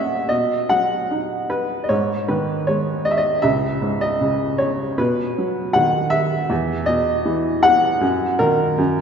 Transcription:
upright piano
Already playing: F#1 F#2 A#3 C#4 C#5 D#5 E5 F#5 G#5
0.29 B2 D#5
0.69 F#3 F#5
1.11 D#4
1.50 B4
1.84 D#5
1.89 G#2 C#5
2.28 D#3 B4
2.67 G#3 C#5
3.05 D#5
3.11 E5
3.17 D#5
3.42 C#2 E5
3.81 G#2
4.01 D#5
4.21 C#3
4.58 C#5
4.98 B2 B4
5.38 F#3
5.73 D#3 F#5
6.10 E5
6.50 E2
6.86 B2 D#5
7.25 E3
7.63 F#5
8.01 F#2
8.39 D#3 A#4
8.78 F#2

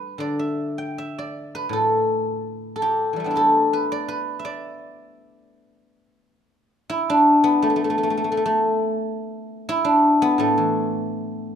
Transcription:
guzheng
Already playing: G3 D4 G4 A4 B4
0.18 D3 D5
0.39 E5
0.78 G5
0.98 E5
1.18 D5
1.55 B4
1.69 A2 A4
2.76 A4
2.82 G4
3.13 E3 G3
3.20 A3
3.24 B3 D4
3.31 E4
3.36 G4 A4
3.73 B4
3.92 D5
4.08 B4
4.39 E5
4.45 D5
6.90 E4
7.10 D4
7.44 B3
7.62 A3
7.70 A3
7.76 A3
7.84 A3
7.90 A3
7.98 A3
8.03 A3
8.10 A3
8.17 A3
8.24 A3
8.32 A3
8.37 A3
8.46 A3
9.69 E4
9.85 D4
10.22 B3
10.38 A2 A3
10.58 E3

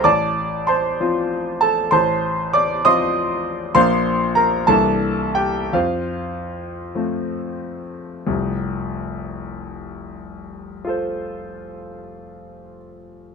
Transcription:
grand piano
0.04 A1 D5 A5 D6
0.67 C5 A5 C6
1.00 F3 C4 F4
1.61 A4 A5
1.91 A1 C5 A5 C6
2.53 D5 D6
2.85 F3 C4 F4 D#5 C6 D#6
3.75 A#1 F3 A#3 D4 C5 F5 C6
4.35 A#4 A#5
4.67 C2 E3 A#3 D4 A4 A5
5.35 G4 G5
5.73 F2 F4 C5 F5
6.95 F3 A3 C4
8.27 F1 C2
10.85 F4 A4
10.89 C5

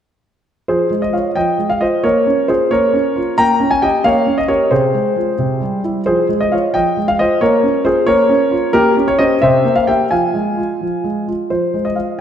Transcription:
grand piano
0.68 F3 G#4 C5
0.91 G#3
1.02 D#5
1.13 F4 C#5 F5
1.36 F3 D#5 G5
1.58 G#3
1.70 F5
1.81 F4 C5 D#5
2.04 A#3 A#4 C#5
2.27 C#4
2.48 F4 G#4 C5
2.71 A#3 A#4 C#5
2.93 C#4
3.16 F4
3.38 A#3 G5 A#5
3.60 C#4
3.71 G#5
3.82 G4 D#5 G5
4.04 A#3 C#5 F5
4.27 C#4
4.38 D#5
4.48 G4 A#4 C#5
4.71 C3 G#4 C5
4.94 G#3
5.16 G#3 F4
5.38 C3
5.61 G3
5.84 G3 E4
6.06 F3 G#4 C5
6.29 G#3
6.41 D#5
6.52 F4 C#5 F5
6.74 F3 D#5 G5
6.97 G#3
7.08 F5
7.19 F4 C5 D#5
7.41 A#3 A#4 C#5
7.63 C#4
7.85 F4 G#4 C5
8.07 A#3 A#4 C#5
8.29 C#4
8.51 F4
8.73 A#3 G4 A#4
8.97 C#4
9.08 C#5
9.19 C#4 G4 C5 D#5
9.42 C3 C5 E5
9.65 A#3
9.76 F5
9.87 A#3 G4 E5 G5
10.11 F3 F5 G#5
10.34 G#3
10.57 F4
10.81 F3
11.04 G#3
11.28 F4
11.50 F3 C5
11.74 G#3
11.85 D#5
11.96 F4 F5

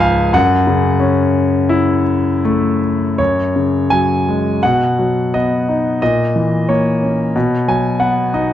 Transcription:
grand piano
Already playing: C#2 G#2 F3 G#5 A5 B5
0.00 F5
0.33 F#2 F#5
0.67 C#3
1.00 C#4
1.69 E4
2.45 A3
3.18 F#2 C#5
3.56 C#3
3.90 F#3 G#5
4.29 G#3
4.63 B2 F#5
4.99 F#3
5.34 B3 D#5
5.69 D#4
6.02 A#2 D#5
6.36 E3
6.69 A#3 C#5
7.03 C#4
7.36 B2
7.68 F#3 G#5
8.00 B3 F#5
8.34 D#4 D#5

